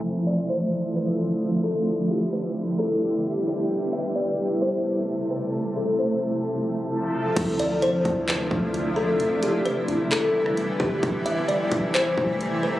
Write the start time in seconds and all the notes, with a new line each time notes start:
0.04 D3 F3 A3 C4 E4
0.27 D5
0.49 C5
0.96 B4
1.64 A4
1.87 D3 G3 B3 G4
2.10 G4
2.33 B4
2.79 A4
3.47 G4
3.70 C3 A3 A4
3.93 E5
4.16 D5
4.62 C5
5.31 B4
5.53 F3
5.76 A4
5.99 C5
7.36 D2 C3 F3 A3 D4 E4, kick, closed hi-hat, crash
7.59 D5, closed hi-hat
7.82 C5, closed hi-hat
8.05 D2, kick, closed hi-hat
8.28 B4, clap, closed hi-hat
8.51 D2, kick
8.74 closed hi-hat
8.96 A4
9.20 E1 D3 E3 G3 B3 E4, closed hi-hat
9.43 G4, closed hi-hat
9.65 B4, closed hi-hat
9.88 E1, closed hi-hat
10.11 A4, clap, closed hi-hat
10.46 cross-stick
10.57 closed hi-hat
10.80 E1 G4, kick
11.03 A1 C3 E3 A3, kick, closed hi-hat
11.26 E5, closed hi-hat
11.48 D5, closed hi-hat
11.72 A1, kick, closed hi-hat
11.94 C5, clap, closed hi-hat
12.17 A1, kick
12.41 closed hi-hat
12.63 B4